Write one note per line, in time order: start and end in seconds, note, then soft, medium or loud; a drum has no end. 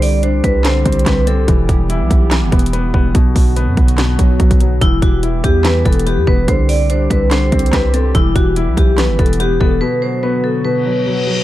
0.00 0.41 C2 loud
0.00 0.63 D3 medium
0.00 1.46 D3 medium
0.00 3.11 G3 medium
0.00 1.46 C4 medium
0.00 3.11 G4 medium
0.00 0.20 D5 medium
0.00 open hi-hat medium
0.23 1.27 D4 medium
0.23 0.41 C5 medium
0.23 closed hi-hat medium
0.44 0.84 C2 loud
0.44 0.62 B4 medium
0.44 kick medium
0.44 closed hi-hat medium
0.64 1.48 D3 medium
0.64 1.04 C5 medium
0.64 snare loud
0.64 clap medium
0.64 closed hi-hat medium
0.86 1.06 C2 loud
0.86 1.05 C4 medium
0.86 kick medium
0.86 closed hi-hat medium
0.92 closed hi-hat medium
0.99 closed hi-hat medium
1.06 1.46 C2 loud
1.06 1.26 C4 medium
1.06 1.24 B4 medium
1.06 kick loud
1.06 snare loud
1.06 clap medium
1.06 closed hi-hat medium
1.27 1.48 C4 medium
1.27 1.45 A4 medium
1.27 closed hi-hat medium
1.48 1.68 E1 loud
1.48 2.30 E3 loud
1.48 3.13 E3 medium
1.48 3.13 B3 medium
1.48 kick loud
1.48 closed hi-hat medium
1.69 2.02 E1 loud
1.69 kick medium
1.69 closed hi-hat medium
1.90 2.94 E4 loud
1.90 closed hi-hat medium
2.01 2.10 B1 loud
2.11 2.44 B1 loud
2.11 kick medium
2.11 closed hi-hat medium
2.31 3.15 E3 medium
2.31 snare loud
2.31 clap medium
2.31 closed hi-hat medium
2.43 2.52 G1 loud
2.52 2.92 E1 loud
2.52 2.72 B3 medium
2.52 kick loud
2.52 closed hi-hat soft
2.59 closed hi-hat medium
2.66 closed hi-hat medium
2.73 2.93 B3 medium
2.73 closed hi-hat medium
2.94 3.14 E1 loud
2.94 3.15 B3 medium
2.94 kick medium
3.15 3.35 B1 loud
3.15 3.97 B2 medium
3.15 4.80 D3 medium
3.15 4.80 F#3 medium
3.15 6.45 B3 medium
3.15 4.80 F#4 medium
3.15 kick loud
3.15 closed hi-hat medium
3.36 3.69 B1 loud
3.36 kick medium
3.36 open hi-hat medium
3.56 4.61 B3 medium
3.56 closed hi-hat medium
3.67 3.77 F#2 loud
3.77 4.17 B1 loud
3.77 kick medium
3.77 closed hi-hat soft
3.88 closed hi-hat medium
3.98 4.81 B2 medium
3.98 snare loud
3.98 clap medium
3.98 closed hi-hat medium
4.19 4.39 B1 loud
4.19 4.38 F#3 medium
4.19 kick medium
4.19 closed hi-hat medium
4.40 4.80 B1 loud
4.40 4.59 F#3 medium
4.40 kick loud
4.40 closed hi-hat medium
4.51 kick medium
4.51 closed hi-hat medium
4.60 4.81 F#3 medium
4.60 closed hi-hat medium
4.81 5.01 E1 loud
4.81 6.46 E3 medium
4.81 5.63 E3 medium
4.81 9.77 G3 medium
4.81 4.99 E4 loud
4.81 6.46 G4 medium
4.81 kick loud
4.81 closed hi-hat medium
5.02 5.42 E1 loud
5.02 5.20 F#4 medium
5.02 kick loud
5.02 closed hi-hat medium
5.23 6.27 E4 medium
5.23 closed hi-hat medium
5.44 5.84 E2 loud
5.44 5.62 G4 medium
5.44 kick medium
5.44 closed hi-hat medium
5.64 6.48 E3 medium
5.64 5.83 B4 medium
5.64 snare loud
5.64 clap medium
5.64 closed hi-hat medium
5.85 6.19 E1 loud
5.85 6.05 B3 medium
5.85 6.03 A4 medium
5.85 kick medium
5.85 closed hi-hat soft
5.93 closed hi-hat medium
5.99 closed hi-hat medium
6.06 6.26 B3 medium
6.06 6.24 G4 medium
6.06 closed hi-hat medium
6.17 6.27 E2 loud
6.27 6.47 E1 loud
6.27 6.48 B3 medium
6.27 6.45 B4 medium
6.27 kick medium
6.48 7.08 C2 loud
6.48 7.30 D3 medium
6.48 8.13 D3 medium
6.48 8.13 C4 medium
6.48 9.78 G4 medium
6.48 6.66 C5 medium
6.48 kick loud
6.48 closed hi-hat medium
6.69 6.87 D5 medium
6.69 open hi-hat medium
6.90 7.94 D4 medium
6.90 7.08 C5 medium
6.90 closed hi-hat medium
7.10 7.51 C2 loud
7.10 7.28 B4 medium
7.10 kick medium
7.10 closed hi-hat medium
7.31 8.15 D3 medium
7.31 7.71 C5 medium
7.31 snare loud
7.31 clap medium
7.31 closed hi-hat medium
7.52 7.72 C2 loud
7.52 7.72 C4 medium
7.52 kick medium
7.52 closed hi-hat medium
7.59 closed hi-hat medium
7.66 closed hi-hat medium
7.73 8.13 C2 loud
7.73 7.92 C4 medium
7.73 7.91 B4 medium
7.73 kick loud
7.73 snare medium
7.73 clap medium
7.73 closed hi-hat medium
7.94 8.15 C4 medium
7.94 8.12 A4 medium
7.94 closed hi-hat medium
8.15 8.35 E1 loud
8.15 8.97 E3 loud
8.15 9.80 E3 medium
8.15 11.44 B3 medium
8.15 8.33 E4 loud
8.15 kick loud
8.15 closed hi-hat medium
8.35 8.69 E1 loud
8.35 8.53 F#4 loud
8.35 kick medium
8.35 closed hi-hat medium
8.56 9.61 E4 loud
8.56 closed hi-hat medium
8.68 8.77 B1 loud
8.77 9.11 B1 loud
8.77 8.95 G4 medium
8.77 kick medium
8.77 closed hi-hat medium
8.98 9.81 E3 medium
8.98 9.16 B4 medium
8.98 snare loud
8.98 clap medium
8.98 closed hi-hat medium
9.09 9.18 G1 loud
9.19 9.59 E1 loud
9.19 9.38 B3 medium
9.19 9.37 A4 medium
9.19 kick medium
9.19 closed hi-hat soft
9.26 closed hi-hat medium
9.33 closed hi-hat medium
9.40 9.59 B3 medium
9.40 9.58 G4 medium
9.40 closed hi-hat medium
9.60 9.81 E1 loud
9.60 9.81 B3 medium
9.60 9.78 A4 medium
9.60 kick medium
9.81 10.63 B2 medium
9.81 11.44 D3 medium
9.81 11.44 F#3 medium
9.81 11.44 F#4 medium
9.81 9.99 B4 medium
10.02 10.20 C5 medium
10.23 11.27 B3 medium
10.23 10.41 B4 medium
10.44 10.62 A4 medium
10.65 11.44 B2 medium
10.65 11.44 B4 medium
10.65 reverse cymbal medium
10.86 11.05 F#3 medium
11.07 11.26 F#3 medium
11.27 11.44 F#3 medium